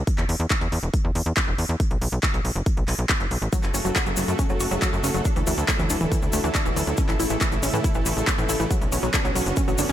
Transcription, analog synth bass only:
0.18 E2
0.29 E2
0.40 E2
0.61 E2
0.72 E2
0.83 E1
1.05 E2
1.15 E2
1.26 E2
1.48 E1
1.58 E2
1.69 E2
1.91 B1
2.02 B1
2.12 B1
2.34 B1
2.45 B1
2.56 F#1
2.77 B1
2.88 B1
2.99 B1
3.20 F#1
3.31 B1
3.42 A1
3.64 F#1
3.74 F#1
3.85 F#1
4.07 F#1
4.17 F#1
4.28 F#2
4.50 F#1
4.61 F#1
4.71 F#1
4.93 F#2
5.04 F#1
5.14 F#1
5.36 D2
5.47 D2
5.58 D2
5.79 D2
5.90 D2
6.01 D1
6.22 D2
6.33 D2
6.44 D2
6.66 D1
6.76 D2
6.87 D2
7.09 A1
7.20 A1
7.30 A1
7.52 A1
7.63 A1
7.73 A2
7.95 A1
8.06 A1
8.17 A1
8.38 A2
8.49 A1
8.60 A1
8.81 B1
8.92 B1
9.03 B1
9.25 B1
9.35 B1
9.46 F#1
9.68 A1
9.79 F#1
9.89 B1

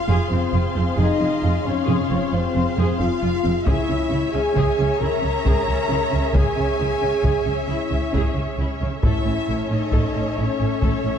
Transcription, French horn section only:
Already playing: F4
0.32 C4
0.98 D#4
1.66 C#4
2.33 C4
3.00 F4
3.68 E4
4.32 G#4
5.00 A#4
6.34 G#4
7.70 E4
9.04 E4
9.71 D#4
10.38 C#4

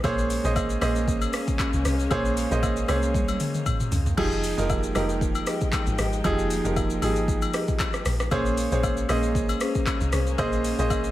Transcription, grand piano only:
0.04 A#3 G#4 C5 C#5
0.44 A#3 G#4 C5 D#5
0.81 A#3 G#4 C5 D#5
2.11 A#3 G#4 C5 C#5
2.51 A#3 G#4 C5 D#5
2.88 A#3 G#4 C5 C#5
4.17 F3 D#4 G4 G#4
4.58 F3 D#4 G4 A#4
4.95 F3 D#4 G4 A#4
6.24 F3 D#4 G4 G#4
6.65 F3 D#4 G4 A#4
7.02 F3 D#4 G4 G#4
8.31 A#3 G#4 C5 C#5
8.71 A#3 G#4 C5 C#5
9.09 A#3 G#4 C5 D#5
10.38 A#3 G#4 C5 D#5
10.78 A#3 G#4 C5 D#5

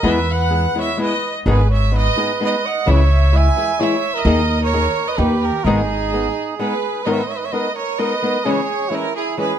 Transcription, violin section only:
0.09 E5
0.31 F#5
0.81 E5
1.03 D#5
1.50 B4
1.73 E5
1.98 D#5
2.45 D#5
2.67 F#5
2.90 E5
3.36 G#5
3.81 E5
4.17 D#5
4.64 C#5
5.08 D#5
5.17 B4
5.43 A#4
5.67 G#4
6.60 B4
7.06 D#5
7.14 E5
7.22 D#5
7.31 E5
7.36 D#5
7.45 E5
7.53 D#5
7.77 C#5
8.00 D#5
8.48 C#5
8.94 A#4
9.16 G#4
9.39 B4

